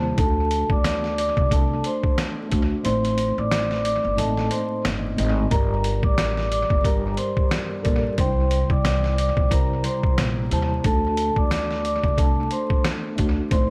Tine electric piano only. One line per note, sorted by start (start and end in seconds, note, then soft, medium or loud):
0.00 0.19 C3 medium
0.00 0.20 G3 medium
0.00 0.19 E4 medium
0.00 0.20 C5 medium
0.00 0.13 A5 medium
0.00 0.19 A#5 medium
0.16 1.24 A3 medium
0.16 1.25 D4 medium
0.16 0.26 D#4 medium
0.26 1.29 F#4 medium
1.50 2.33 A3 medium
1.50 2.34 D4 medium
1.50 2.34 A4 medium
2.49 2.78 A3 medium
2.49 2.79 D4 medium
2.49 2.79 F#4 medium
2.83 3.91 A2 medium
2.83 3.92 A3 medium
2.83 3.92 C4 medium
2.83 3.92 D#4 medium
2.83 2.93 D5 medium
2.92 3.96 C5 medium
4.15 4.99 A2 medium
4.15 4.99 A3 medium
4.15 4.25 A#3 medium
4.15 5.00 D#4 medium
4.15 5.00 D#5 medium
4.24 5.03 C4 medium
5.17 5.45 A2 medium
5.17 5.45 A3 medium
5.17 5.46 C4 medium
5.17 5.46 D#4 medium
5.17 5.47 D#5 medium
5.51 6.59 G2 medium
5.51 6.59 G3 medium
5.51 6.60 G4 medium
5.51 6.60 A#4 medium
5.51 6.60 D5 medium
6.82 7.66 G2 medium
6.82 7.66 G3 medium
6.82 7.66 G4 medium
6.82 7.67 A#4 medium
6.82 7.67 D5 medium
7.82 8.11 G2 medium
7.82 8.11 G3 medium
7.82 8.12 A4 medium
7.82 8.12 A#4 medium
7.82 8.12 D5 medium
8.17 9.25 C3 medium
8.17 9.26 G3 medium
8.17 8.26 D4 medium
8.17 9.26 C5 medium
8.17 9.27 G5 medium
8.25 9.29 E4 medium
9.49 10.32 C3 medium
9.49 10.33 G3 medium
9.49 10.33 E4 medium
9.49 10.33 C5 medium
9.49 10.34 A#5 medium
10.50 10.78 C3 medium
10.50 10.79 G3 medium
10.50 10.79 E4 medium
10.50 10.80 C5 medium
10.50 10.80 A5 medium
10.82 11.91 A3 medium
10.82 11.92 D4 medium
10.82 10.93 D#4 medium
10.92 11.96 F#4 medium
12.16 12.99 A3 medium
12.16 13.00 D4 medium
12.16 13.01 A4 medium
13.15 13.44 A3 medium
13.15 13.45 D4 medium
13.15 13.46 F#4 medium
13.50 13.70 A2 medium
13.50 13.70 A3 medium
13.50 13.70 C4 medium
13.50 13.70 D#4 medium
13.50 13.60 D5 medium
13.59 13.70 C5 medium